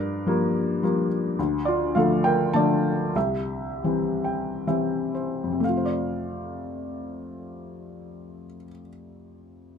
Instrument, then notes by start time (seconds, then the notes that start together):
felt piano
Already playing: G2 D4 A#4
0.26 F3 G3 A#3
0.83 F3 G3 A#3
1.39 D2
1.65 F4 D5
1.95 D3 F3 A3 A4 F5
2.24 A#4 G5
2.53 D3 F3 A3 D5 A5
3.15 C2 G4 E5
3.84 E3 G3 C4
4.24 G5
4.67 E3 G3 C4 E5
5.15 C5
5.44 F2
5.52 C3
5.60 A3
5.64 F5
5.69 F4
5.77 C5
5.85 D5